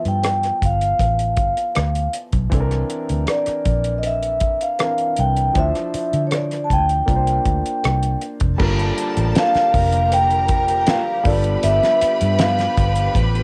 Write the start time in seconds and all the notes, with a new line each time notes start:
Already playing: E3 F3 B3 A4
0.05 G2 G5, closed hi-hat
0.24 cross-stick, closed hi-hat
0.43 cross-stick, closed hi-hat
0.62 G1 F5, kick, closed hi-hat
0.81 closed hi-hat
1.00 A1, kick, closed hi-hat
1.19 closed hi-hat
1.37 G1, kick, closed hi-hat
1.57 closed hi-hat
1.75 D2, cross-stick, closed hi-hat
1.95 closed hi-hat
2.13 closed hi-hat
2.32 B1, kick, closed hi-hat
2.50 C2 E3 C4 D4 A4, kick, closed hi-hat
2.60 A#4
2.71 cross-stick, closed hi-hat
2.90 closed hi-hat
3.09 D2, closed hi-hat
3.27 D5, cross-stick, closed hi-hat
3.46 muted fingered electric bass stroke, cross-stick, closed hi-hat
3.65 A#1, kick, closed hi-hat
3.84 closed hi-hat
3.98 D#5
4.03 E5, closed hi-hat
4.23 closed hi-hat
4.40 kick, closed hi-hat
4.61 F5, closed hi-hat
4.79 E3 C4 D4 A#4, cross-stick, closed hi-hat
4.98 closed hi-hat
5.16 C2 G5, closed hi-hat
5.37 closed hi-hat
5.53 D2 F3 D4 E4 C5, kick, closed hi-hat
5.59 E5
5.75 cross-stick, closed hi-hat
5.94 muted fingered electric bass stroke, closed hi-hat
6.13 D3, closed hi-hat
6.27 C#5
6.31 D5, cross-stick, closed hi-hat
6.51 cross-stick, closed hi-hat
6.64 A5
6.70 D2 G5, kick, closed hi-hat
6.89 closed hi-hat
7.06 C2 A#3 D4 F4 A#4, kick, closed hi-hat
7.16 C5
7.27 closed hi-hat
7.45 D2, kick, closed hi-hat
7.66 closed hi-hat
7.84 C2, cross-stick, closed hi-hat
8.03 closed hi-hat
8.21 closed hi-hat
8.40 F1, kick, closed hi-hat
8.58 G1 D3 F3 G3 A#3 D4 F4 G4 A4 A#4 A5, kick, crash
8.79 closed hi-hat
8.98 closed hi-hat
9.17 A1, closed hi-hat
9.35 A#3 F4 A4 F5, snare, closed hi-hat
9.55 muted fingered electric bass stroke, snare, closed hi-hat
9.73 F1 A#4 A#5, kick, open hi-hat
9.92 closed hi-hat
10.12 G5, closed hi-hat
10.30 closed hi-hat
10.48 kick, closed hi-hat
10.68 closed hi-hat
10.81 G5
10.87 A#3 F4 A4 F5, snare, closed hi-hat
11.23 G1 D3 G3 A#3 B3 D4 F4 B4 D5 B5, kick, open hi-hat
11.28 B3 A4
11.44 closed hi-hat
11.63 G1 E5, closed hi-hat
11.83 snare, closed hi-hat
12.01 muted fingered electric bass stroke, closed hi-hat
12.21 G2, closed hi-hat
12.39 F3 B3 E4 F5, snare, closed hi-hat
12.58 snare, closed hi-hat
12.77 G1, kick, closed hi-hat
12.95 closed hi-hat
13.15 A1, kick, closed hi-hat
13.35 closed hi-hat